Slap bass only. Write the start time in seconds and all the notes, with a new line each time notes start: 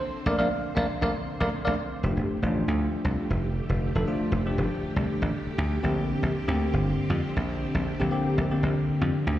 0.26 A#1
0.39 A#1
0.76 A#1
1.02 A#1
1.40 A#1
1.67 A#1
2.03 F1
2.17 F1
2.42 A1
2.68 D2
3.05 C2
3.30 F1
3.69 F1
3.95 F1
4.21 muted slap bass stroke
4.32 F1
4.58 F1
4.83 muted slap bass stroke
4.96 C2
5.22 A1
5.47 muted slap bass stroke
5.58 D2
5.84 A#1
6.23 A#1
6.48 D2
6.73 G1
7.10 F2
7.36 A#1
7.75 A#1
8.01 A#1
8.26 muted slap bass stroke
8.38 A#1
8.63 A#1
8.89 muted slap bass stroke
9.01 F2
9.27 D2